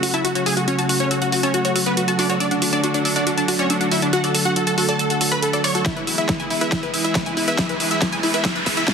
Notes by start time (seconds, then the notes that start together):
Already playing: C#3 F#3 A3 F#4
0.03 F#4, open hi-hat
0.14 E4 E5 A5, closed hi-hat
0.24 F#4, closed hi-hat
0.35 F#4 C#5, closed hi-hat
0.46 G#4 G#5 E6, open hi-hat
0.57 F#4 F#5, closed hi-hat
0.68 C#4 F#4 C#5, closed hi-hat
0.78 F#4 A5, closed hi-hat
0.89 F#4, open hi-hat
1.00 C#4 C#5, closed hi-hat
1.11 F#4 E6, closed hi-hat
1.22 F#4 F#5, closed hi-hat
1.32 F#4, open hi-hat
1.43 C#4 C#5 A5, closed hi-hat
1.54 F#4, closed hi-hat
1.65 F#4 C#5, closed hi-hat
1.76 F#4 E6, open hi-hat
1.86 B3 B4 F#5, closed hi-hat
1.97 F#4, closed hi-hat
2.08 F#4 A5, closed hi-hat
2.19 D4 F#4 D5, open hi-hat
2.30 F#4 C#5, closed hi-hat
2.40 D3 D4 D5 E6, closed hi-hat
2.51 D4 F#5, closed hi-hat
2.62 D4 F#4, open hi-hat
2.73 D4 D5 A5, closed hi-hat
2.84 D4 F#4, closed hi-hat
2.94 D4 D5, closed hi-hat
3.05 D4 E6, open hi-hat
3.16 D4 D5 F#5, closed hi-hat
3.27 D4 F#4, closed hi-hat
3.37 D4 A5, closed hi-hat
3.48 D4 F#4, open hi-hat
3.59 C#4 C#5 D5, closed hi-hat
3.70 D4 E6, closed hi-hat
3.81 D4 F#5, closed hi-hat
3.92 E4 F#4 E5, open hi-hat
4.02 D4 A5, closed hi-hat
4.13 F#4 F#5, closed hi-hat
4.24 A4 D5, closed hi-hat
4.35 A4 E6, open hi-hat
4.45 F#4 F#5
4.56 F#4 A4, closed hi-hat
4.67 A4 A5, closed hi-hat
4.78 F#4 A4, open hi-hat
4.89 A4 D5 A5, closed hi-hat
4.99 A4 E6, closed hi-hat
5.10 A4 F#5, closed hi-hat
5.21 F#4 A4, open hi-hat
5.32 A4 B4 B5, closed hi-hat
5.42 A4, closed hi-hat
5.53 A4 D5, closed hi-hat
5.64 C#5 D5 C#6, open hi-hat
5.75 F#4 A4, closed hi-hat
5.86 E3 G#3 B3 E4 G#4 E5, kick, snare, closed hi-hat, riser
5.96 E4 B4, closed hi-hat
6.07 E4 E6, open hi-hat
6.18 E4 E5, closed hi-hat
6.29 E4, kick, snare, closed hi-hat
6.40 E4 G#5, closed hi-hat
6.50 E4, open hi-hat
6.61 E4 B4 E5, closed hi-hat
6.72 E4, kick, snare, closed hi-hat
6.83 E4 B4, closed hi-hat
6.94 E4 E6, open hi-hat
7.04 E4 E5, closed hi-hat
7.15 E4, kick, snare, closed hi-hat
7.26 E4 G#5, closed hi-hat
7.37 E4, open hi-hat
7.48 E4 B4 E5, closed hi-hat
7.58 E4 E5, kick, snare, closed hi-hat
7.69 E4 B4, closed hi-hat
7.80 E4 E6, open hi-hat
7.91 E4 E5, closed hi-hat
8.02 E4, kick, snare, closed hi-hat
8.12 E4 G#5, closed hi-hat
8.23 E4, open hi-hat
8.34 E4 B4 E5, closed hi-hat
8.45 E4 E5, kick, snare, closed hi-hat
8.55 E4 B4, closed hi-hat
8.66 E4 E6, kick, open hi-hat
8.77 E4 E5, closed hi-hat
8.88 E4, kick, snare, closed hi-hat